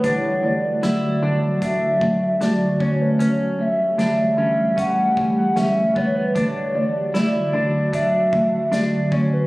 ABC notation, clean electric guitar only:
X:1
M:4/4
L:1/8
Q:1/4=76
K:D
V:1 name="Clean electric guitar"
D2 E D D2 D C | C2 D C C2 C B, | D2 E D D2 D C |]